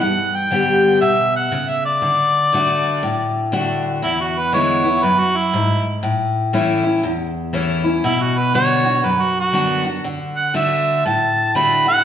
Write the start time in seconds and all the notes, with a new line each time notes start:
0.01 G2 F#5
0.36 G5
0.51 D3 G3 B3 G4
1.01 B2 E5
1.36 F#5
1.52 C#3
1.70 E5
1.86 D5
2.02 D3
2.53 D3 A3 D4 F#4
3.03 A2
3.52 D3 A3 D4 F#4
4.02 E2 E4
4.21 F#4
4.39 B4
4.53 D3 G#3 B3 E4 C#5
4.84 B3 E4
5.03 F#2 B4
5.19 F#4
5.36 E4
5.54 G#2
6.03 A2
6.53 E3 A3 C#4 E4
6.84 C#4 E4
7.03 E2
7.53 E3 A3 C#4 E4
7.84 C#4 E4
8.04 B2 E4
8.22 F#4
8.38 B4
8.54 D3 B3 D4 F#4 C#5
8.84 D4 F#4
9.04 F#2 B4
9.21 F#4
9.41 F#4
9.53 D3 B3 D4 F#4
9.85 D4 F#4
10.04 D3
10.36 F#5
10.54 D3 A3 D4 F#4 E5
11.06 A2 A5
11.55 D3 A3 D4 F#4 B5
11.86 D4 F#4 F#5